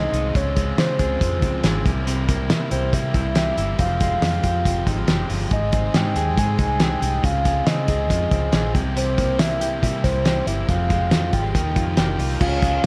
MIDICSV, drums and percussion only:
0, 0, Header, 1, 2, 480
1, 0, Start_track
1, 0, Tempo, 430725
1, 389, Time_signature, 4, 2, 24, 8
1, 14331, End_track
2, 0, Start_track
2, 0, Title_t, "Drums"
2, 152, Note_on_c, 9, 42, 59
2, 263, Note_off_c, 9, 42, 0
2, 391, Note_on_c, 9, 36, 99
2, 391, Note_on_c, 9, 42, 76
2, 503, Note_off_c, 9, 36, 0
2, 503, Note_off_c, 9, 42, 0
2, 629, Note_on_c, 9, 42, 75
2, 632, Note_on_c, 9, 36, 77
2, 740, Note_off_c, 9, 42, 0
2, 743, Note_off_c, 9, 36, 0
2, 872, Note_on_c, 9, 38, 109
2, 872, Note_on_c, 9, 42, 83
2, 984, Note_off_c, 9, 38, 0
2, 984, Note_off_c, 9, 42, 0
2, 1106, Note_on_c, 9, 42, 58
2, 1108, Note_on_c, 9, 36, 69
2, 1217, Note_off_c, 9, 42, 0
2, 1220, Note_off_c, 9, 36, 0
2, 1350, Note_on_c, 9, 36, 88
2, 1353, Note_on_c, 9, 42, 90
2, 1461, Note_off_c, 9, 36, 0
2, 1465, Note_off_c, 9, 42, 0
2, 1586, Note_on_c, 9, 42, 57
2, 1587, Note_on_c, 9, 36, 86
2, 1697, Note_off_c, 9, 42, 0
2, 1699, Note_off_c, 9, 36, 0
2, 1823, Note_on_c, 9, 42, 77
2, 1827, Note_on_c, 9, 38, 96
2, 1935, Note_off_c, 9, 42, 0
2, 1939, Note_off_c, 9, 38, 0
2, 2069, Note_on_c, 9, 36, 93
2, 2073, Note_on_c, 9, 42, 57
2, 2180, Note_off_c, 9, 36, 0
2, 2184, Note_off_c, 9, 42, 0
2, 2308, Note_on_c, 9, 42, 77
2, 2420, Note_off_c, 9, 42, 0
2, 2547, Note_on_c, 9, 42, 70
2, 2549, Note_on_c, 9, 36, 84
2, 2659, Note_off_c, 9, 42, 0
2, 2660, Note_off_c, 9, 36, 0
2, 2785, Note_on_c, 9, 38, 117
2, 2785, Note_on_c, 9, 42, 89
2, 2896, Note_off_c, 9, 38, 0
2, 2896, Note_off_c, 9, 42, 0
2, 3022, Note_on_c, 9, 42, 59
2, 3133, Note_off_c, 9, 42, 0
2, 3265, Note_on_c, 9, 36, 92
2, 3269, Note_on_c, 9, 42, 87
2, 3377, Note_off_c, 9, 36, 0
2, 3380, Note_off_c, 9, 42, 0
2, 3496, Note_on_c, 9, 38, 27
2, 3502, Note_on_c, 9, 42, 61
2, 3503, Note_on_c, 9, 36, 86
2, 3608, Note_off_c, 9, 38, 0
2, 3614, Note_off_c, 9, 42, 0
2, 3615, Note_off_c, 9, 36, 0
2, 3736, Note_on_c, 9, 42, 84
2, 3740, Note_on_c, 9, 38, 95
2, 3848, Note_off_c, 9, 42, 0
2, 3852, Note_off_c, 9, 38, 0
2, 3985, Note_on_c, 9, 42, 57
2, 4096, Note_off_c, 9, 42, 0
2, 4220, Note_on_c, 9, 42, 76
2, 4225, Note_on_c, 9, 36, 93
2, 4331, Note_off_c, 9, 42, 0
2, 4336, Note_off_c, 9, 36, 0
2, 4463, Note_on_c, 9, 42, 72
2, 4466, Note_on_c, 9, 36, 79
2, 4574, Note_off_c, 9, 42, 0
2, 4578, Note_off_c, 9, 36, 0
2, 4706, Note_on_c, 9, 38, 105
2, 4706, Note_on_c, 9, 42, 80
2, 4817, Note_off_c, 9, 38, 0
2, 4817, Note_off_c, 9, 42, 0
2, 4942, Note_on_c, 9, 42, 58
2, 4945, Note_on_c, 9, 36, 72
2, 5054, Note_off_c, 9, 42, 0
2, 5057, Note_off_c, 9, 36, 0
2, 5187, Note_on_c, 9, 36, 84
2, 5191, Note_on_c, 9, 42, 87
2, 5298, Note_off_c, 9, 36, 0
2, 5302, Note_off_c, 9, 42, 0
2, 5425, Note_on_c, 9, 36, 78
2, 5426, Note_on_c, 9, 42, 66
2, 5536, Note_off_c, 9, 36, 0
2, 5537, Note_off_c, 9, 42, 0
2, 5657, Note_on_c, 9, 42, 72
2, 5661, Note_on_c, 9, 38, 103
2, 5768, Note_off_c, 9, 42, 0
2, 5772, Note_off_c, 9, 38, 0
2, 5903, Note_on_c, 9, 46, 57
2, 6014, Note_off_c, 9, 46, 0
2, 6140, Note_on_c, 9, 42, 82
2, 6144, Note_on_c, 9, 36, 95
2, 6251, Note_off_c, 9, 42, 0
2, 6255, Note_off_c, 9, 36, 0
2, 6380, Note_on_c, 9, 42, 69
2, 6385, Note_on_c, 9, 36, 83
2, 6491, Note_off_c, 9, 42, 0
2, 6496, Note_off_c, 9, 36, 0
2, 6623, Note_on_c, 9, 38, 108
2, 6623, Note_on_c, 9, 42, 91
2, 6734, Note_off_c, 9, 38, 0
2, 6734, Note_off_c, 9, 42, 0
2, 6861, Note_on_c, 9, 42, 58
2, 6973, Note_off_c, 9, 42, 0
2, 7105, Note_on_c, 9, 36, 85
2, 7106, Note_on_c, 9, 42, 81
2, 7216, Note_off_c, 9, 36, 0
2, 7218, Note_off_c, 9, 42, 0
2, 7340, Note_on_c, 9, 42, 57
2, 7343, Note_on_c, 9, 36, 83
2, 7451, Note_off_c, 9, 42, 0
2, 7454, Note_off_c, 9, 36, 0
2, 7575, Note_on_c, 9, 42, 79
2, 7579, Note_on_c, 9, 38, 103
2, 7686, Note_off_c, 9, 42, 0
2, 7690, Note_off_c, 9, 38, 0
2, 7827, Note_on_c, 9, 42, 58
2, 7938, Note_off_c, 9, 42, 0
2, 8066, Note_on_c, 9, 36, 97
2, 8066, Note_on_c, 9, 42, 73
2, 8177, Note_off_c, 9, 36, 0
2, 8178, Note_off_c, 9, 42, 0
2, 8305, Note_on_c, 9, 42, 65
2, 8307, Note_on_c, 9, 36, 80
2, 8417, Note_off_c, 9, 42, 0
2, 8419, Note_off_c, 9, 36, 0
2, 8543, Note_on_c, 9, 38, 111
2, 8543, Note_on_c, 9, 42, 87
2, 8655, Note_off_c, 9, 38, 0
2, 8655, Note_off_c, 9, 42, 0
2, 8781, Note_on_c, 9, 42, 66
2, 8786, Note_on_c, 9, 36, 74
2, 8893, Note_off_c, 9, 42, 0
2, 8897, Note_off_c, 9, 36, 0
2, 9028, Note_on_c, 9, 36, 91
2, 9031, Note_on_c, 9, 42, 86
2, 9140, Note_off_c, 9, 36, 0
2, 9143, Note_off_c, 9, 42, 0
2, 9266, Note_on_c, 9, 36, 84
2, 9266, Note_on_c, 9, 42, 59
2, 9377, Note_off_c, 9, 36, 0
2, 9377, Note_off_c, 9, 42, 0
2, 9499, Note_on_c, 9, 42, 77
2, 9503, Note_on_c, 9, 38, 95
2, 9610, Note_off_c, 9, 42, 0
2, 9615, Note_off_c, 9, 38, 0
2, 9749, Note_on_c, 9, 36, 96
2, 9751, Note_on_c, 9, 42, 60
2, 9861, Note_off_c, 9, 36, 0
2, 9863, Note_off_c, 9, 42, 0
2, 9992, Note_on_c, 9, 42, 78
2, 10104, Note_off_c, 9, 42, 0
2, 10230, Note_on_c, 9, 42, 71
2, 10232, Note_on_c, 9, 36, 83
2, 10342, Note_off_c, 9, 42, 0
2, 10343, Note_off_c, 9, 36, 0
2, 10468, Note_on_c, 9, 38, 114
2, 10468, Note_on_c, 9, 42, 96
2, 10579, Note_off_c, 9, 38, 0
2, 10579, Note_off_c, 9, 42, 0
2, 10712, Note_on_c, 9, 42, 61
2, 10823, Note_off_c, 9, 42, 0
2, 10953, Note_on_c, 9, 36, 83
2, 10959, Note_on_c, 9, 42, 86
2, 11064, Note_off_c, 9, 36, 0
2, 11070, Note_off_c, 9, 42, 0
2, 11186, Note_on_c, 9, 38, 29
2, 11190, Note_on_c, 9, 36, 80
2, 11192, Note_on_c, 9, 42, 61
2, 11297, Note_off_c, 9, 38, 0
2, 11302, Note_off_c, 9, 36, 0
2, 11303, Note_off_c, 9, 42, 0
2, 11426, Note_on_c, 9, 42, 75
2, 11430, Note_on_c, 9, 38, 95
2, 11537, Note_off_c, 9, 42, 0
2, 11541, Note_off_c, 9, 38, 0
2, 11672, Note_on_c, 9, 42, 62
2, 11783, Note_off_c, 9, 42, 0
2, 11908, Note_on_c, 9, 42, 74
2, 11909, Note_on_c, 9, 36, 88
2, 12019, Note_off_c, 9, 42, 0
2, 12021, Note_off_c, 9, 36, 0
2, 12148, Note_on_c, 9, 42, 70
2, 12150, Note_on_c, 9, 36, 85
2, 12260, Note_off_c, 9, 42, 0
2, 12261, Note_off_c, 9, 36, 0
2, 12385, Note_on_c, 9, 38, 106
2, 12385, Note_on_c, 9, 42, 94
2, 12496, Note_off_c, 9, 38, 0
2, 12496, Note_off_c, 9, 42, 0
2, 12626, Note_on_c, 9, 42, 64
2, 12628, Note_on_c, 9, 36, 80
2, 12737, Note_off_c, 9, 42, 0
2, 12740, Note_off_c, 9, 36, 0
2, 12870, Note_on_c, 9, 36, 89
2, 12874, Note_on_c, 9, 42, 88
2, 12981, Note_off_c, 9, 36, 0
2, 12985, Note_off_c, 9, 42, 0
2, 13106, Note_on_c, 9, 42, 58
2, 13107, Note_on_c, 9, 36, 86
2, 13217, Note_off_c, 9, 42, 0
2, 13219, Note_off_c, 9, 36, 0
2, 13339, Note_on_c, 9, 42, 78
2, 13343, Note_on_c, 9, 38, 92
2, 13450, Note_off_c, 9, 42, 0
2, 13454, Note_off_c, 9, 38, 0
2, 13589, Note_on_c, 9, 46, 57
2, 13700, Note_off_c, 9, 46, 0
2, 13827, Note_on_c, 9, 49, 90
2, 13828, Note_on_c, 9, 36, 94
2, 13939, Note_off_c, 9, 36, 0
2, 13939, Note_off_c, 9, 49, 0
2, 14067, Note_on_c, 9, 42, 75
2, 14069, Note_on_c, 9, 36, 84
2, 14178, Note_off_c, 9, 42, 0
2, 14181, Note_off_c, 9, 36, 0
2, 14331, End_track
0, 0, End_of_file